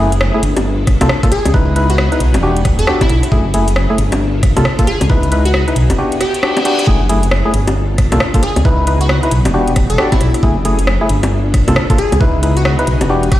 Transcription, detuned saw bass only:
Already playing: F#1
0.43 G1
0.57 G1
1.01 C2
1.46 C#2
1.54 C#2
2.21 B1
2.34 E1
2.65 D1
2.79 E1
3.10 B1
3.32 F#1
3.98 G1
4.12 G1
4.57 C2
5.01 C#2
5.10 C#2
5.76 B1
5.90 E1
6.87 F#1
7.54 G1
7.68 G1
8.12 C2
8.57 C#2
8.65 C#2
9.32 B1
9.46 E1
9.76 D1
9.90 E1
10.21 B1
10.43 F#1
11.10 G1
11.23 G1
11.68 C2
12.12 C#2
12.21 C#2
12.87 B1
13.01 E1
13.32 E1

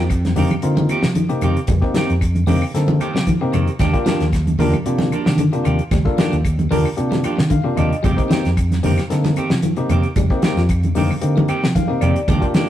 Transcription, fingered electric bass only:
Already playing: F2
0.37 F2
0.63 D3
0.90 muted fingered electric bass stroke
1.04 F3
1.42 F2
1.68 F2
1.95 muted fingered electric bass stroke
2.09 F2
2.47 F2
2.74 D3
3.00 muted fingered electric bass stroke
3.14 F3
3.54 F2
3.79 D#2
4.07 muted fingered electric bass stroke
4.20 D#2
4.59 D#2
4.86 C3
5.12 muted fingered electric bass stroke
5.27 D#3
5.65 D#2
5.91 D#2
6.18 muted fingered electric bass stroke
6.32 D#2
6.71 D#2
6.98 C3
7.25 muted fingered electric bass stroke
7.39 D#3
7.78 D#2
8.04 F2
8.32 muted fingered electric bass stroke
8.45 F2
8.84 F2
9.11 D3
9.38 muted fingered electric bass stroke
9.50 F3
9.90 F2
10.16 F2
10.43 muted fingered electric bass stroke
10.56 F2
10.95 F2
11.22 D3
11.49 muted fingered electric bass stroke
11.63 F3
12.02 F2
12.28 D#2
12.55 muted fingered electric bass stroke

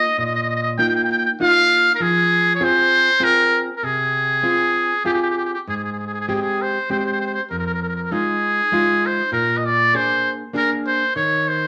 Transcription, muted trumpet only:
Already playing: D#5
0.19 D#5
0.26 D#5
0.35 D#5
0.43 D#5
0.49 D#5
0.55 D#5
0.63 D#5
0.78 G5
0.89 G5
0.95 G5
1.04 G5
1.12 G5
1.18 G5
1.25 G5
1.42 F5
1.95 A#4
2.02 G#4
2.55 C#5
2.64 C5
3.24 A#4
3.76 A#4
3.84 G#4
5.06 G4
5.13 G4
5.22 G4
5.30 G4
5.38 G4
5.45 G4
5.54 G4
5.69 G#4
5.77 G#4
5.84 G#4
5.92 G#4
5.99 G#4
6.07 G#4
6.13 G#4
6.21 G#4
6.28 G#4
6.35 G#4
6.42 G#4
6.62 C5
6.92 C5
6.99 C5
7.06 C5
7.13 C5
7.21 C5
7.26 C5
7.34 C5
7.51 A#4
7.59 A#4
7.67 A#4
7.74 A#4
7.83 A#4
7.88 A#4
7.96 A#4
8.04 A#4
8.12 G#4
9.06 C5
9.33 A#4
9.57 D#5
9.66 D5
9.96 C5
10.57 A#4
10.87 C5
11.16 C#5
11.49 C5

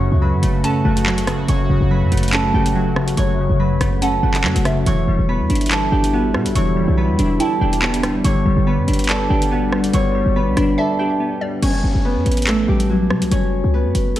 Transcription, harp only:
Already playing: A3 F#4 A4 B4 C#5 F#5 A5 C#6
0.22 B4 B5
0.64 A4 A5
0.85 F#4 F#5
1.49 C#5 C#6
1.91 B4 B5
2.33 A4 A5
2.54 G4 G5
2.75 F#4 F#5
3.17 C#5 C#6
3.60 B4 B5
4.02 A4 A5
4.23 F#4 F#5
4.87 C#5 C#6
5.29 B4 B5
5.72 A4 A5
5.92 G4 G5
6.13 F#4 F#5
6.55 C#5 C#6
6.97 B4 B5
7.40 A4 A5
7.61 G4 G5
8.24 C#5 C#6
8.67 B4 B5
9.09 A4 A5
9.30 G4 G5
9.51 F#4 F#5
9.94 C#5 C#6
10.36 B4 B5
10.78 A4 A5
10.99 G4 G5
11.62 C#4 C#5
12.05 B3 B4
12.47 A3 A4
12.68 G3 G4
12.90 F#3 F#4
13.31 C#4 C#5
13.74 B3 B4
14.16 A4

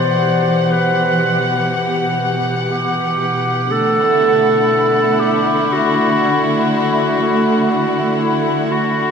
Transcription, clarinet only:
Already playing: C5
0.71 B4
2.71 G4
3.71 A4
5.19 G4
5.73 F#4
6.72 F#4
8.21 E4
8.72 F#4

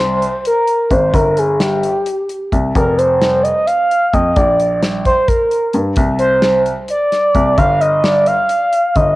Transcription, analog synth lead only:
Already playing: C5
0.47 A#4
0.92 C5
1.15 A#4
1.38 G#4
1.61 G4
2.77 A#4
2.98 C5
3.43 D#5
3.66 F5
4.13 D#5
4.36 D5
5.06 C5
5.28 A#4
6.19 C5
6.90 D5
7.58 F5
7.81 D#5
8.04 D5
8.27 F5
8.96 D#5

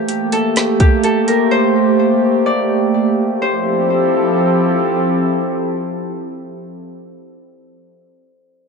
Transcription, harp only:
Already playing: G4 E5
0.33 A4
0.80 G4
1.04 A4
1.28 A#4
1.51 C5
2.46 D5
3.42 C5

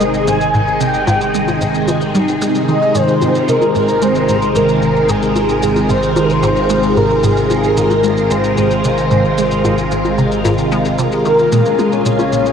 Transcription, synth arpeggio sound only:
0.00 G#3
0.27 G#2
0.54 G#2
0.81 C3
1.08 G#2
1.34 G#3
1.61 G#2
1.88 G#2
2.15 G3
2.42 G#3
2.68 D#3
2.95 G#2
3.22 G#2
3.48 C3
3.75 G#2
4.02 G#3
4.29 G#2
4.56 G#2
4.82 C3
5.09 G#2
5.36 G#3
5.63 G#2
5.90 G#2
6.16 C3
6.43 G#2
6.70 G#3
6.97 G#2
7.24 G#2
7.50 C3
7.77 G#2
8.04 G#3
8.31 G#2
8.57 G#2
8.84 C3
9.11 G#2
9.38 G#3
9.65 G#2
9.91 G#2
10.18 C3
10.45 G#2
10.72 G#3
10.99 C3
11.25 D#3
11.52 A#2
11.79 A#3
12.06 A#2
12.32 A#2

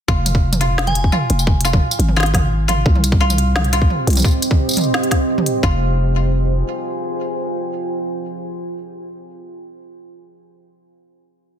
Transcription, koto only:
0.08 F4
0.61 F4
1.12 F4
1.65 F4
2.16 F4
2.68 F4
3.21 F4
3.73 F4
5.63 F4

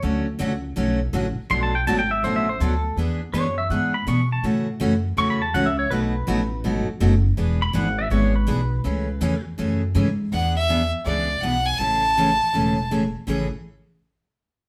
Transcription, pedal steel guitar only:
1.51 C6
1.63 A5
1.75 G5
1.87 A5
1.99 G5
2.11 E5
2.24 C5
2.36 E5
2.49 C5
2.61 A4
3.34 C#5
3.58 E5
3.71 F#5
3.94 B5
4.08 C#6
4.32 A5
5.18 C#6
5.30 B5
5.42 A5
5.54 F#5
5.66 E5
5.79 C#5
5.91 B4
6.02 B4
7.62 B5
7.75 F#5
7.99 E5
8.11 C#5
8.36 B4

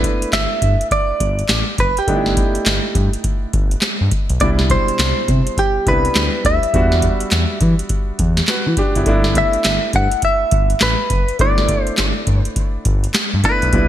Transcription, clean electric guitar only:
Already playing: B4
0.33 E5
0.92 D5
1.80 B4
1.99 G4
4.41 D5
4.71 C5
5.59 G4
5.88 B4
6.46 E5
9.38 E5
9.96 F#5
10.25 E5
10.83 B4
11.41 D5
11.83 C5
13.45 B4

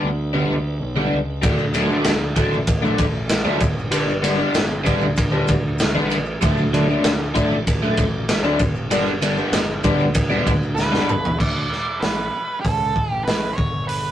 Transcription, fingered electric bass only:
0.03 D2
0.50 D2
0.80 B1
1.12 C#2
1.43 D2
2.06 D2
2.52 A1
2.99 A1
3.45 D2
3.61 G1
4.55 G1
5.01 D2
5.49 D2
5.95 A1
6.42 D2
7.04 D2
7.50 A1
7.98 A1
8.42 D2
8.60 G1
9.52 G1
9.98 D2
10.46 D2
10.92 G1
11.40 D2
12.02 A1
12.65 C#2
13.11 A1
13.58 G1

